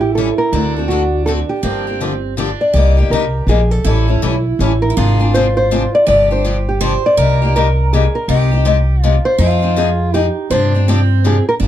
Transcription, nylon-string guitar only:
0.01 G4
0.15 A4
0.38 A#4
0.88 F#4
1.26 A4
1.49 G4
2.61 D5
3.11 A#4
3.49 G#4
3.71 A4
4.82 A#4
5.34 C5
5.57 C5
5.95 D5
6.08 D5
6.32 C5
6.69 G4
7.06 D5
7.56 A#4
7.93 G#4
8.15 A#4
9.25 C5
9.78 G#4
10.14 G4
10.51 C5
11.26 G#4
11.49 A#4
11.62 F4

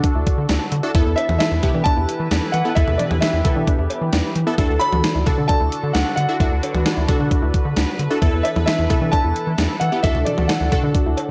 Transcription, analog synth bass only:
0.15 D2
0.38 D3
0.49 D2
0.72 D3
0.95 E2
1.06 E2
1.29 E2
1.52 E2
1.74 E3
1.97 E2
2.20 E3
2.31 E2
2.54 E3
2.77 E2
2.88 E2
3.11 E2
3.33 E2
3.56 E3
3.79 E2
4.01 E3
4.13 E2
4.36 E3
4.58 D2
4.70 D2
4.92 D2
5.15 D2
5.38 D3
5.61 D2
5.83 D3
5.95 D2
6.17 D3
6.40 D2
6.52 D2
6.74 D2
6.97 D2
7.20 D3
7.42 D2
7.65 D3
7.77 D2
7.99 D3
8.22 E2
8.33 E2
8.56 E2
8.79 E2
9.02 E3
9.24 E2
9.47 E3
9.58 E2
9.81 E3
10.04 D2
10.15 D2
10.38 D2
10.61 D2
10.83 D3
11.06 D2

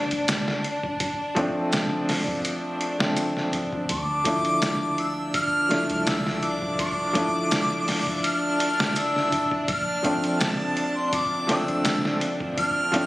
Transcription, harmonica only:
3.91 D6
4.99 E6
5.35 F6
6.07 E6
6.43 D6
6.79 D6
8.24 F6
8.96 E6
9.69 F6
10.41 A5
10.96 C6
11.14 D6
11.50 E6
12.59 F6

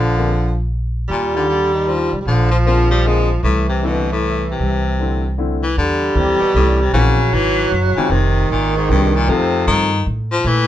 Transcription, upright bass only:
Already playing: A#1
1.09 D#2
2.12 C2
2.25 A#1
3.43 C2
4.59 C2
5.77 E2
6.15 D2
6.40 muted upright bass stroke
6.54 C2
6.93 A#1
7.32 G#1
7.71 F#1
7.97 muted upright bass stroke
8.09 F1
8.50 G#1
8.89 C2
9.28 F2
9.67 G2
10.06 A2
10.44 A#2

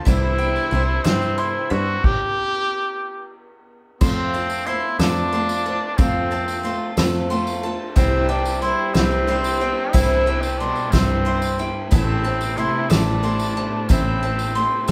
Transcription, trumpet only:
0.07 E4
1.05 C4
1.39 E4
1.71 F#4
2.04 G4
4.01 C4
4.67 E4
4.99 D4
5.97 C4
7.96 C4
8.29 D4
8.62 E4
8.94 C4
9.92 E4
10.41 C4
10.58 D4
10.91 C4
11.90 C4
12.57 E4
12.90 D4
13.89 C4

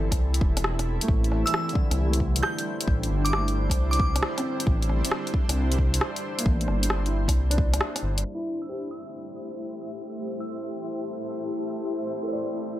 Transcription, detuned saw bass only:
Already playing: G1
0.12 C2
0.41 E1
1.08 A1
1.91 C2
2.87 A1
3.10 G1
3.70 C2
4.67 A1
5.49 C2
6.46 A1
6.68 G1
7.28 C2
8.03 G1

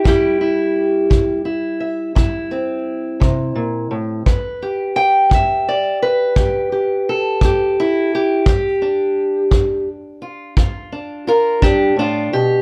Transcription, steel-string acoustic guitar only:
0.04 C3 G3 E4 G4
0.41 E4
1.10 C3
1.45 E4
1.80 E5
2.15 C3 E4
2.51 C4
3.20 C3
3.55 A#2
3.91 A2
4.26 G2 B4
4.62 G4
4.96 G5
5.30 G2
5.34 E5
5.68 D5
6.02 B4
6.36 G2 G4
6.72 G4
7.09 A4
7.41 G2 G4
7.80 E4
8.15 G4
8.46 G2 G4
8.82 D4
9.51 G2
10.22 F4
10.57 G2 F4
10.92 D4
11.27 F4 A#4
11.62 G2 D4 G4
11.97 A2 D4 F4
12.33 B2 G4

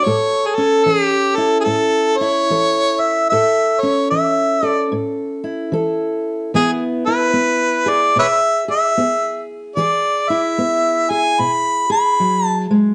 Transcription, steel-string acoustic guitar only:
Already playing: A3
0.06 A2 A4
0.58 C#4
0.86 E3
1.38 E4
1.66 A2
2.21 E4
2.50 E3 A4
3.32 A2 A4
3.83 C#4
4.11 E3
4.63 A4
4.92 A2
5.44 E4
5.72 E3 A4
6.54 E3 B3 E4
7.07 E4
7.33 B3
7.86 G#4
8.16 B2
8.68 G#4
8.97 B3 G#4
9.77 E3 G#4
10.30 E4
10.58 B3
11.10 G#4
11.39 B2
11.90 G#4
12.20 F#3
12.71 G#3

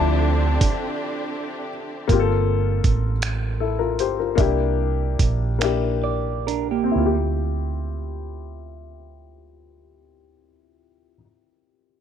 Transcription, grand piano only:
Already playing: F3 C4 E4 A5
2.08 A#3 C4 F4
2.13 G4
2.20 A4
3.60 E4 A4
3.79 F4 A#4
4.00 G4 C5
4.19 F4 A#4
4.35 A#3 D4 E4
4.41 G4
5.59 A#3 D4 E4
5.64 G4
6.84 C4
6.91 E4
6.98 F4
7.06 G4

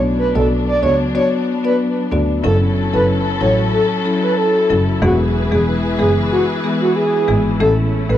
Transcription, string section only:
Already playing: F#3 B3 D4
2.44 F#3 C#4 E4 A4
5.02 E3 G#4 B4
7.60 A3 C#4

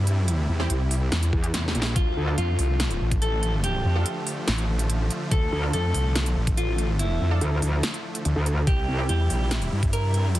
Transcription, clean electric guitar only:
1.96 F4
2.38 F4
3.22 A4
3.64 G4
5.32 A4
5.74 A4
6.57 F4
6.99 E4
8.67 G4
9.09 G4
9.93 A#4

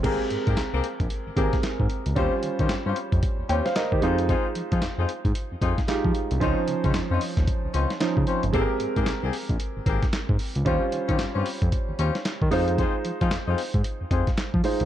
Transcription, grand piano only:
0.03 G#3 C4 G4 A#4
1.36 G#3 C4 G4 G#4
1.44 A#4
2.15 G3 C#4 F4 C5
3.49 C#5 G5
3.65 C5 F5
3.76 A#4 D#5
3.92 G4 C5
4.01 G#3 D#4 F4 C5
5.88 G#3 D#4 F4 G4
6.40 F3 C#4 D#4 C5
8.00 F3 C#4 D#4 C5
8.53 G#3 C4 G4 A4
8.61 A#4
10.65 G3 C#4 F4 C5
12.51 G#3 D#4 F4 C5
14.64 G#3 D#4 F4 C5

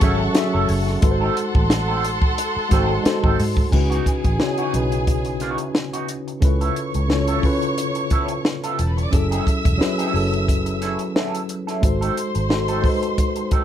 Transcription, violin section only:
Already playing: A4 F#5 C#6
1.03 A4 F#5 C6
3.72 G#4 G#5
6.42 C#5 C#6
8.63 F4 F5
8.72 G4 G5
8.79 A4 A5
8.88 B4 B5
8.97 C#5 C#6
9.05 D5 D6
9.13 E5 E6
11.83 C5 C6

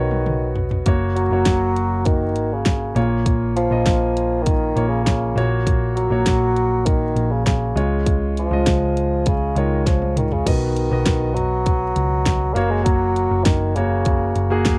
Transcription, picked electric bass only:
Already playing: B1
0.86 F#1
1.31 F#1
1.46 F#1
2.36 G#1
2.96 A#1
3.71 A#1
3.86 A#1
4.76 A#1
5.36 A#1
6.11 A#1
6.27 A#1
7.16 A#1
7.76 C#2
8.51 C#2
8.67 C#2
9.56 C#2
10.47 B1
10.91 B1
11.06 B1
11.96 C#2
12.55 F#1
13.31 F#1
13.46 F#1
14.36 F#1

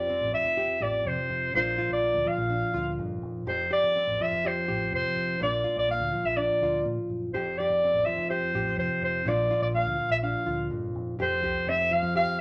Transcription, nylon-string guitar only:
Already playing: F2 F3 G4
0.09 C4
0.33 F3
0.57 G4
0.81 G4
1.06 C3
1.54 A#2 F3 A#3 D4 F4
1.78 F4
2.02 A#3
2.25 F3
2.50 D4
2.74 F4
2.98 F2
3.47 F2 G4
3.71 G4
3.96 C4
4.21 F3
4.45 G4
4.68 G4
4.92 C3
5.40 A#2 A#3 D4 F4, muted nylon-string guitar stroke
5.64 F4
5.89 A#3
6.13 F3
6.37 D4
6.63 F4
7.34 F2 G4
7.60 G4
7.84 C4
8.06 F3
8.30 G4
8.55 G4
8.78 C3
9.25 A#2 F3 A#3 D4 F4
9.51 F4
9.75 A#3
9.97 F3
10.23 D4
10.46 F4
10.70 F2
11.19 F2 G4
11.44 G4
11.69 C4
11.91 F3
12.15 G4

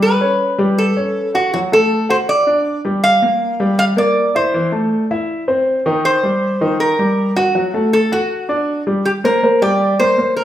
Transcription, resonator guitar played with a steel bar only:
0.02 B4
0.78 A4
1.35 F#4
1.54 F#4
1.73 A4
2.10 C5
2.29 D5
3.04 F5
3.79 F5
3.98 D5
4.36 C5
6.05 C5
6.80 A#4
7.36 F#4
7.93 A4
8.13 F#4
9.05 G4
9.25 A#4
9.62 D5
9.99 C5
10.37 A#4

